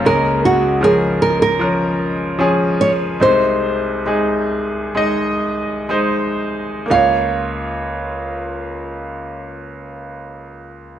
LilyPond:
<<
  \new Staff \with { instrumentName = "Nylon-string guitar" } { \time 4/4 \key des \major \tempo 4 = 66 bes'8 ges'8 aes'8 bes'16 bes'4.~ bes'16 des''8 | c''2. r4 | f''1 | }
  \new Staff \with { instrumentName = "Grand piano" } { \time 4/4 \key des \major <aes des' bes'>4 <f des' bes'>4 <f des' bes'>4 <f des' aes'>4 | <aes ees' c''>4 <aes ees' aes'>4 <aes ees' ees''>4 <aes ees' c''>4 | <bes f' des''>1 | }
  \new Staff \with { instrumentName = "Grand piano" } { \clef bass \time 4/4 \key des \major <des, des>1 | <c, c>1 | des,1 | }
>>